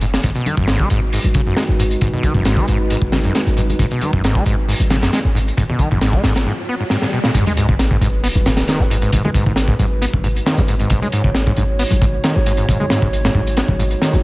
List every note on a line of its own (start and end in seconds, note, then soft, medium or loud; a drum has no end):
0.00 0.18 F#1 loud
0.00 0.06 G#2 loud
0.00 closed hi-hat medium
0.14 snare loud
0.14 closed hi-hat medium
0.23 0.32 G#1 loud
0.23 0.30 G#2 medium
0.23 6.43 G#3 medium
0.23 6.43 D#4 medium
0.23 6.43 F#4 medium
0.23 6.43 B4 medium
0.23 kick loud
0.23 closed hi-hat loud
0.35 0.47 B2 medium
0.35 closed hi-hat soft
0.46 0.56 D#3 medium
0.46 closed hi-hat medium
0.46 high conga medium
0.57 0.84 G#1 medium
0.57 0.67 F#2 loud
0.57 kick loud
0.68 0.82 G#2 loud
0.68 snare loud
0.68 closed hi-hat medium
0.79 0.89 G#3 medium
0.79 kick medium
0.90 1.18 G#1 medium
0.90 1.00 G#2 medium
0.90 closed hi-hat medium
1.13 1.19 G#2 medium
1.13 open hi-hat medium
1.24 1.51 G#1 loud
1.24 closed hi-hat soft
1.24 high conga medium
1.34 1.41 C#3 medium
1.34 kick medium
1.34 closed hi-hat medium
1.34 high conga loud
1.47 1.56 F#2 loud
1.57 1.64 G#3 medium
1.57 snare loud
1.57 closed hi-hat medium
1.69 1.96 G#1 loud
1.80 1.83 G#2 loud
1.80 closed hi-hat medium
1.91 closed hi-hat soft
2.01 2.09 G#1 loud
2.01 2.08 G#2 medium
2.01 kick loud
2.01 closed hi-hat medium
2.14 2.25 B2 medium
2.14 low conga medium
2.23 2.34 D#3 medium
2.23 kick loud
2.23 closed hi-hat medium
2.23 high conga medium
2.34 2.62 G#1 medium
2.34 2.44 F#2 loud
2.34 kick medium
2.45 2.59 G#2 loud
2.45 snare loud
2.45 closed hi-hat medium
2.57 2.66 G#3 loud
2.57 kick medium
2.68 2.96 G#1 medium
2.68 2.78 G#2 medium
2.68 closed hi-hat medium
2.90 2.97 G#2 medium
2.90 closed hi-hat medium
3.02 3.29 G#1 loud
3.02 kick medium
3.12 3.19 C#3 medium
3.12 snare loud
3.12 closed hi-hat medium
3.12 high conga medium
3.23 3.33 F#2 loud
3.23 closed hi-hat soft
3.35 3.42 G#3 medium
3.35 snare loud
3.35 closed hi-hat medium
3.47 3.74 G#1 loud
3.47 closed hi-hat soft
3.57 3.61 G#2 loud
3.57 closed hi-hat medium
3.57 high conga medium
3.70 closed hi-hat soft
3.70 high conga medium
3.79 3.87 G#1 loud
3.79 3.86 G#2 medium
3.79 kick loud
3.79 closed hi-hat medium
3.79 riser medium
3.91 4.04 B2 medium
3.91 closed hi-hat soft
4.01 4.12 D#3 medium
4.01 closed hi-hat medium
4.01 high conga medium
4.13 4.40 G#1 medium
4.13 4.22 F#2 loud
4.13 kick loud
4.24 4.37 G#2 loud
4.24 snare loud
4.24 closed hi-hat medium
4.35 4.44 G#3 loud
4.35 kick loud
4.46 4.73 G#1 medium
4.46 4.56 G#2 medium
4.46 closed hi-hat medium
4.68 4.75 G#2 medium
4.68 open hi-hat medium
4.80 5.07 G#1 loud
4.80 closed hi-hat soft
4.80 high conga medium
4.90 4.97 C#3 medium
4.90 snare loud
4.90 closed hi-hat medium
4.90 high conga medium
5.02 5.11 F#2 loud
5.02 snare loud
5.02 closed hi-hat medium
5.13 5.19 G#3 medium
5.13 snare loud
5.13 closed hi-hat medium
5.25 5.51 G#1 loud
5.35 5.39 G#2 loud
5.35 closed hi-hat medium
5.48 closed hi-hat soft
5.57 5.65 G#1 loud
5.57 5.64 G#2 medium
5.57 kick loud
5.57 closed hi-hat medium
5.70 5.81 B2 medium
5.70 low conga medium
5.79 5.89 D#3 medium
5.79 kick medium
5.79 closed hi-hat medium
5.79 high conga medium
5.91 6.18 G#1 medium
5.91 6.00 F#2 loud
5.91 kick loud
6.01 6.15 G#2 loud
6.01 snare loud
6.01 closed hi-hat medium
6.13 6.22 G#3 loud
6.13 kick medium
6.24 6.46 G#1 medium
6.24 6.34 G#2 medium
6.24 snare loud
6.24 closed hi-hat medium
6.36 snare loud
6.36 closed hi-hat medium
6.46 6.53 G#2 medium
6.69 6.75 B3 medium
6.80 6.84 G#2 medium
6.90 6.97 G#2 medium
6.90 snare medium
7.02 7.06 G#2 medium
7.02 snare medium
7.13 7.19 B2 medium
7.24 7.31 A#2 loud
7.24 snare medium
7.35 7.42 G#1 loud
7.35 7.45 G#2 medium
7.35 14.23 G#3 medium
7.35 14.23 D#4 medium
7.35 14.23 F#4 medium
7.35 10.89 B4 medium
7.35 kick loud
7.35 closed hi-hat medium
7.35 sub drop medium
7.47 7.53 G#3 medium
7.47 closed hi-hat soft
7.47 high conga medium
7.57 7.67 G#2 loud
7.57 closed hi-hat medium
7.69 7.96 G#1 medium
7.69 7.75 G#2 medium
7.69 kick medium
7.79 snare loud
7.79 closed hi-hat medium
7.91 7.97 G#2 loud
7.91 kick medium
8.01 8.29 G#1 medium
8.01 8.08 G#2 loud
8.01 closed hi-hat medium
8.01 high conga medium
8.24 8.28 B3 loud
8.24 open hi-hat medium
8.35 8.62 G#1 loud
8.35 closed hi-hat soft
8.35 high conga medium
8.46 8.50 G#2 loud
8.46 snare loud
8.46 closed hi-hat medium
8.57 snare loud
8.57 closed hi-hat medium
8.68 8.81 D#3 loud
8.68 snare loud
8.68 closed hi-hat medium
8.80 9.07 G#1 loud
8.80 8.83 G#3 loud
8.90 8.97 G#2 medium
8.90 closed hi-hat medium
9.02 9.11 G#2 medium
9.02 closed hi-hat soft
9.13 9.20 G#1 loud
9.13 9.22 G#2 medium
9.13 kick loud
9.13 closed hi-hat loud
9.25 9.30 G#3 medium
9.25 high conga medium
9.25 low conga medium
9.34 9.45 G#2 loud
9.34 kick medium
9.34 closed hi-hat medium
9.46 9.73 G#1 loud
9.46 9.52 G#2 medium
9.46 kick loud
9.56 snare loud
9.56 closed hi-hat medium
9.68 9.75 G#2 loud
9.68 kick loud
9.79 10.07 G#1 medium
9.79 9.86 G#2 loud
9.79 closed hi-hat medium
9.79 high conga medium
10.02 10.06 B3 loud
10.02 closed hi-hat medium
10.13 10.40 G#1 loud
10.13 kick loud
10.13 high conga medium
10.24 10.28 G#2 loud
10.24 closed hi-hat medium
10.36 closed hi-hat soft
10.46 10.59 D#3 loud
10.46 snare loud
10.46 closed hi-hat medium
10.57 10.85 G#1 loud
10.57 10.61 G#3 loud
10.57 closed hi-hat soft
10.57 low conga medium
10.68 10.75 G#2 medium
10.68 closed hi-hat medium
10.79 10.89 G#2 medium
10.79 closed hi-hat soft
10.90 10.98 G#1 loud
10.90 11.00 G#2 medium
10.90 14.23 C#5 loud
10.90 kick loud
10.90 closed hi-hat medium
11.02 11.08 G#3 medium
11.02 closed hi-hat soft
11.02 high conga medium
11.12 11.23 G#2 loud
11.12 closed hi-hat medium
11.24 11.51 G#1 medium
11.24 11.30 G#2 medium
11.24 kick loud
11.35 snare loud
11.35 closed hi-hat medium
11.47 11.53 G#2 loud
11.47 kick medium
11.56 11.85 G#1 medium
11.56 11.64 G#2 loud
11.56 closed hi-hat medium
11.56 high conga medium
11.79 11.83 B3 loud
11.79 open hi-hat medium
11.91 12.18 G#1 loud
11.91 closed hi-hat soft
11.91 high conga loud
12.01 12.06 G#2 loud
12.01 kick medium
12.01 closed hi-hat medium
12.24 12.37 D#3 loud
12.24 snare loud
12.24 closed hi-hat medium
12.35 12.63 G#1 loud
12.35 12.39 G#3 loud
12.46 12.53 G#2 medium
12.46 closed hi-hat medium
12.57 12.67 G#2 medium
12.57 closed hi-hat soft
12.69 12.76 G#1 loud
12.69 12.78 G#2 medium
12.69 kick loud
12.69 closed hi-hat medium
12.80 12.86 G#3 medium
12.80 high conga medium
12.80 low conga medium
12.90 13.00 G#2 loud
12.90 snare loud
12.90 closed hi-hat medium
13.02 13.29 G#1 medium
13.02 13.08 G#2 medium
13.02 kick medium
13.13 closed hi-hat medium
13.25 13.30 G#2 loud
13.25 snare loud
13.25 closed hi-hat medium
13.35 13.62 G#1 medium
13.35 13.42 G#2 loud
13.35 kick medium
13.35 high conga medium
13.47 closed hi-hat medium
13.57 13.61 B3 loud
13.57 snare medium
13.57 closed hi-hat medium
13.68 13.96 G#1 loud
13.68 kick medium
13.68 high conga loud
13.79 13.83 G#2 loud
13.79 closed hi-hat medium
13.91 closed hi-hat soft
14.02 14.15 D#3 loud
14.02 snare loud
14.02 closed hi-hat medium
14.13 14.23 G#1 loud
14.13 14.17 G#3 loud
14.13 closed hi-hat soft
14.13 low conga medium